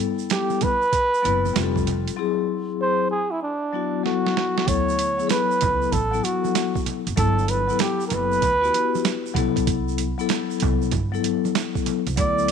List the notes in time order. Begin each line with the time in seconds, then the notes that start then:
Already playing: G3 B3 E4 A4
0.19 shaker
0.30 G4, snare, closed hi-hat, shaker
0.50 high conga, shaker
0.61 B4, kick, closed hi-hat, high conga, low conga, shaker
0.82 shaker
0.93 kick, closed hi-hat, shaker
1.14 shaker
1.22 F#1 F#3 B3 E4 B4, closed hi-hat, high conga, shaker
1.45 high conga, shaker
1.53 F1 G3 C4 F4 G4, snare, closed hi-hat, shaker
1.63 A4
1.76 kick, high conga, shaker
1.87 closed hi-hat, low conga, shaker
2.08 closed hi-hat, shaker
2.16 F#3 C4 E4 G#4
2.81 C5
3.11 G#4
3.31 E4
3.42 D4
3.73 F#3 B3 E4 F#4
4.04 F#3 B3 E4 F#4 A4, snare
4.27 snare
4.37 snare
4.58 snare
4.66 D2 F#3 B3 E4 A4 C#5, kick, closed hi-hat, shaker
4.89 shaker
4.99 closed hi-hat, shaker
5.18 F#3 B3 E4 G#4, shaker
5.27 A4 B4, snare, closed hi-hat, shaker
5.51 shaker
5.61 C#2, kick, closed hi-hat, high conga, low conga, shaker
5.82 shaker
5.92 A1 A4, kick, closed hi-hat, low conga, shaker
6.12 F#3 B3 E4 A4, shaker
6.24 F#4, closed hi-hat, high conga, shaker
6.45 high conga, shaker
6.55 snare, closed hi-hat, shaker
6.75 kick, shaker
6.86 closed hi-hat, low conga, shaker
7.07 F#1, closed hi-hat, shaker
7.16 G1 F#3 B3 E4 A4, kick, closed hi-hat, shaker
7.39 shaker
7.48 B4, closed hi-hat, shaker
7.68 F#3 B3 E4 A4, shaker
7.79 G4, snare, closed hi-hat, shaker
8.00 shaker
8.08 F#1 A#4, closed hi-hat, high conga, low conga, shaker
8.14 B4
8.32 shaker
8.42 D2, kick, closed hi-hat, low conga, shaker
8.61 B3 E4 F#4 G4, shaker
8.74 closed hi-hat, high conga, shaker
8.95 high conga, shaker
9.05 snare, closed hi-hat, shaker
9.26 shaker
9.34 C2 F#3 B3 E4 A4, kick, closed hi-hat, low conga, shaker
9.56 kick, closed hi-hat, shaker
9.67 kick, closed hi-hat, shaker
9.88 shaker
9.98 closed hi-hat, shaker
10.18 F#3 B3 E4 A4, shaker
10.29 snare, closed hi-hat, shaker
10.51 shaker
10.60 C2, kick, closed hi-hat, high conga, low conga, shaker
10.82 shaker
10.91 G1, kick, closed hi-hat, low conga, shaker
11.12 F#3 B3 E4 A4, shaker
11.24 closed hi-hat, high conga, shaker
11.45 high conga, shaker
11.55 snare, closed hi-hat, shaker
11.75 kick, shaker
11.86 closed hi-hat, low conga, shaker
12.07 C2, closed hi-hat, shaker
12.16 D2 F#3 B3 E4 A4 D5, kick, closed hi-hat, shaker
12.38 shaker
12.48 closed hi-hat